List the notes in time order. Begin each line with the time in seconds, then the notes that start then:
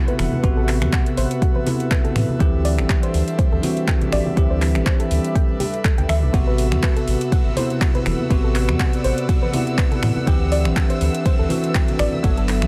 Already playing: C3 B3 E4 F#4 A4 B4 E5 F#5
0.08 B4, closed hi-hat, low conga
0.19 E1, finger snap, open hi-hat, high conga
0.33 low conga
0.43 A1 C3 B3 F#4 B4, kick, closed hi-hat
0.57 A4
0.68 clap, open hi-hat
0.82 E2, finger snap, closed hi-hat, high conga
0.93 F#5, kick, clap, closed hi-hat
1.06 closed hi-hat
1.17 A1 C5, open hi-hat
1.31 closed hi-hat
1.42 F#4, kick, closed hi-hat
1.55 B4, high conga
1.66 C3 B3 E4, open hi-hat, low conga
1.80 closed hi-hat
1.91 B4, kick, clap, closed hi-hat
2.05 A4, closed hi-hat, low conga
2.16 A2, finger snap, open hi-hat, high conga
2.29 low conga
2.39 D2 E3 G3 C4 D4 G4 G5, kick, closed hi-hat
2.57 E5
2.65 D5, open hi-hat
2.71 G4
2.78 A1, finger snap, closed hi-hat, high conga
2.89 G4, kick, clap, closed hi-hat
3.03 C5, closed hi-hat
3.14 D2, open hi-hat
3.28 closed hi-hat
3.39 C5, kick, closed hi-hat
3.52 D2 A4, high conga
3.62 E3 C4 F#4, open hi-hat, low conga
3.77 closed hi-hat
3.88 G5, kick, clap, closed hi-hat
4.01 closed hi-hat, low conga
4.12 A1 D5, finger snap, open hi-hat, high conga
4.26 low conga
4.36 D2 E3 C4 G4 B4, kick, closed hi-hat
4.51 C5
4.62 clap, open hi-hat
4.75 A1, finger snap, closed hi-hat, high conga
4.86 C5, kick, clap, closed hi-hat
5.00 A4, closed hi-hat
5.11 D2, open hi-hat
5.24 closed hi-hat
5.35 G5, kick, closed hi-hat
5.49 high conga
5.60 G4, open hi-hat, low conga
5.74 closed hi-hat
5.84 A4, kick, clap, closed hi-hat
5.98 D2 G5, closed hi-hat, low conga
6.09 D2 E5, finger snap, open hi-hat, high conga
6.23 C2, low conga
6.33 A1 C3 B3 F#4 E6, kick, closed hi-hat, ride
6.47 B4 F#5
6.58 B4, open hi-hat
6.72 E2, finger snap, closed hi-hat, high conga
6.83 B4, kick, clap, closed hi-hat, ride
6.96 A4, closed hi-hat
7.07 A1, open hi-hat
7.21 closed hi-hat
7.32 F#5, kick, closed hi-hat, ride
7.46 A1, high conga
7.56 C3 B3 E4 C5, open hi-hat, low conga
7.70 closed hi-hat
7.81 F#4, kick, clap, closed hi-hat, ride
7.95 B4, closed hi-hat, low conga
8.06 E1, finger snap, open hi-hat, high conga
8.19 low conga
8.30 A1 C3 B3 F#4 B4 D5, kick, closed hi-hat, ride
8.44 A4
8.55 clap, open hi-hat
8.69 E2, finger snap, high conga
8.80 F#5, kick, clap, closed hi-hat, ride
8.93 closed hi-hat
9.04 A1 C5, open hi-hat
9.18 closed hi-hat
9.29 F#4, kick, closed hi-hat, ride
9.42 B4, high conga
9.52 C3 B3 E4, open hi-hat, low conga
9.67 closed hi-hat
9.78 B4, kick, clap, closed hi-hat, ride
9.92 A4, closed hi-hat, low conga
10.03 A2, finger snap, open hi-hat, high conga
10.16 low conga
10.26 D2 E3 C4 D4 G4 A4 E5 G5, kick, closed hi-hat, ride
10.52 D5, open hi-hat
10.65 A1, finger snap, high conga
10.76 G4, kick, clap, closed hi-hat, ride
10.90 C5, closed hi-hat
11.01 D2, open hi-hat
11.15 E5, closed hi-hat
11.26 C5, kick, closed hi-hat, ride
11.39 D2 A4, high conga
11.49 E3 C4 F#4, open hi-hat, low conga
11.64 closed hi-hat
11.75 G5, kick, clap, closed hi-hat, ride
11.88 closed hi-hat, low conga
11.99 A1 D5, finger snap, open hi-hat, high conga
12.12 low conga
12.23 G1 F#3 B3 F#4 A4 B4 F#5, kick, closed hi-hat, ride
12.32 A4
12.37 A4, closed hi-hat
12.48 clap, open hi-hat
12.62 D2, finger snap, closed hi-hat, high conga